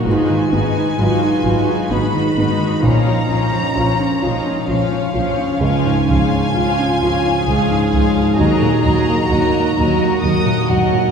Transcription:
X:1
M:3/4
L:1/16
Q:1/4=65
K:Ebm
V:1 name="Violin section"
a8 c'4 | b8 f4 | a12 | b8 e'2 g2 |]
V:2 name="Violin section"
[Gc]2 [Gc]2 [Gc]2 [Gc]2 [Gc]2 [Gc]2 | [Fd]2 [Fd]2 [Fd]2 [Fd]2 [Fd]2 [Fd]2 | [Ff]2 [Ff]2 [Ff]2 [Ff]2 [Ff]2 [Ff]2 | [Be]2 [Be]2 [Be]2 [Be]2 [Be]2 [Be]2 |]
V:3 name="Cello section"
F2 E2 F4 E2 E2- | E4 D2 E2 D4- | D4 F4 A4- | A4 G8 |]
V:4 name="Viola section"
[A,E]2 [A,E]2 [A,E]2 [A,E]2 [A,E]2 [A,E]2 | [F,D]2 [F,D]2 [F,D]2 [F,D]2 [F,D]2 [F,D]2 | [F,D]2 [F,D]2 [F,D]2 [F,D]2 [F,D]2 [F,D]2 | [G,G]2 [G,G]2 [G,G]2 [G,G]2 [G,G]2 [G,G]2 |]
V:5 name="Felt piano" clef=bass
A,, E, C E G, E G, E C E, C E, | B,, F, D F, F D F D F, D F, D | D,, A,, A, D F D F D A, A,, A, A,, | E,, B,, G, B, E B, E B, G, B,, G, B,, |]
V:6 name="Double bass section" clef=bass
A,,,2 A,,,2 A,,,2 A,,,2 A,,,2 A,,,2 | B,,,2 B,,,2 B,,,2 B,,,2 B,,,2 B,,,2 | D,,2 D,,2 D,,2 D,,2 D,,2 D,,2 | E,,2 E,,2 E,,2 E,,2 E,,2 E,,2 |]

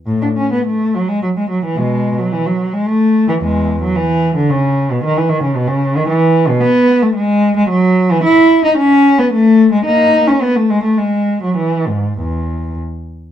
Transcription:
X:1
M:3/4
L:1/16
Q:1/4=110
K:Emix
V:1 name="Cello" clef=bass
A,, D C B, A,2 F, G, F, G, F, E, | [B,,G,]3 F, E, F,2 G, A,3 E, | [E,,G,]3 F, E,3 D, C,3 B,, | ^D, E, D, C, B,, C,2 D, E,3 B,, |
[K:E] B,3 A, G,3 G, F,3 E, | E3 D C3 B, A,3 G, | [^A,D]3 C B, =A, G, A, G,3 F, | E,2 G,,2 E,,4 z4 |]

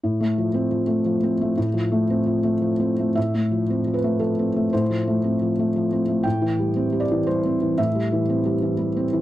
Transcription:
X:1
M:3/4
L:1/8
Q:1/4=118
K:Flyd
V:1 name="Felt piano"
z6 | z6 | e3 B A2 | c4- c z |
g3 d c2 | e4- e z |]
V:2 name="Felt piano" clef=bass
(3A,, A, F, (3C F, A, (3F, C A, | (3A,, F, A, (3C F, A, (3F, C A, | (3A,, A, F, (3C F, A, (3F, C A, | (3A,, F, A, (3C F, A, (3F, C A, |
(3A,, E, G, (3C G, E, (3G, C E, | (3A,, G, E, (3C G, E, (3G, C E, |]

